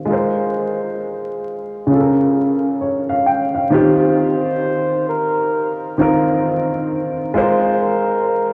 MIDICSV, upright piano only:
0, 0, Header, 1, 2, 480
1, 0, Start_track
1, 0, Key_signature, -3, "major"
1, 0, Tempo, 909091
1, 45, Time_signature, 4, 2, 24, 8
1, 4504, End_track
2, 0, Start_track
2, 0, Title_t, "Upright piano"
2, 0, Program_c, 0, 0
2, 0, Control_c, 0, 64, 127
2, 0, Note_on_c, 0, 60, 49
2, 29, Note_on_c, 0, 56, 72
2, 41, Note_on_c, 0, 65, 60
2, 51, Control_c, 0, 64, 0
2, 55, Note_off_c, 0, 60, 0
2, 55, Note_on_c, 0, 70, 63
2, 68, Note_on_c, 0, 72, 73
2, 142, Control_c, 0, 64, 127
2, 977, Note_off_c, 0, 56, 0
2, 984, Note_off_c, 0, 65, 0
2, 985, Note_on_c, 0, 49, 67
2, 991, Note_off_c, 0, 70, 0
2, 997, Note_off_c, 0, 72, 0
2, 998, Note_on_c, 0, 61, 58
2, 1011, Note_on_c, 0, 65, 61
2, 1012, Control_c, 0, 64, 0
2, 1023, Note_on_c, 0, 69, 56
2, 1057, Note_off_c, 0, 69, 0
2, 1058, Note_on_c, 0, 70, 73
2, 1106, Control_c, 0, 64, 127
2, 1484, Note_on_c, 0, 73, 58
2, 1626, Note_off_c, 0, 73, 0
2, 1633, Note_on_c, 0, 77, 63
2, 1720, Note_off_c, 0, 77, 0
2, 1723, Note_on_c, 0, 79, 63
2, 1866, Note_off_c, 0, 79, 0
2, 1872, Note_on_c, 0, 77, 61
2, 1936, Note_off_c, 0, 49, 0
2, 1942, Note_off_c, 0, 61, 0
2, 1949, Note_off_c, 0, 65, 0
2, 1955, Note_on_c, 0, 51, 88
2, 1963, Note_on_c, 0, 60, 77
2, 1968, Note_on_c, 0, 65, 82
2, 1972, Control_c, 0, 64, 0
2, 1973, Note_off_c, 0, 70, 0
2, 1975, Note_on_c, 0, 67, 92
2, 2069, Control_c, 0, 64, 127
2, 2101, Note_off_c, 0, 77, 0
2, 2799, Note_off_c, 0, 51, 0
2, 2804, Note_off_c, 0, 60, 0
2, 2806, Note_off_c, 0, 65, 0
2, 2809, Note_off_c, 0, 67, 0
2, 3156, Note_on_c, 0, 51, 81
2, 3163, Note_on_c, 0, 60, 81
2, 3170, Note_on_c, 0, 65, 78
2, 3176, Note_on_c, 0, 70, 92
2, 3799, Note_off_c, 0, 51, 0
2, 3803, Note_off_c, 0, 60, 0
2, 3806, Note_off_c, 0, 65, 0
2, 3809, Note_off_c, 0, 70, 0
2, 3875, Note_on_c, 0, 56, 88
2, 3882, Note_on_c, 0, 65, 83
2, 3888, Note_on_c, 0, 70, 80
2, 3892, Control_c, 0, 64, 0
2, 3895, Note_on_c, 0, 72, 103
2, 3982, Control_c, 0, 64, 127
2, 4504, Note_off_c, 0, 56, 0
2, 4504, Note_off_c, 0, 65, 0
2, 4504, Note_off_c, 0, 70, 0
2, 4504, Note_off_c, 0, 72, 0
2, 4504, End_track
0, 0, End_of_file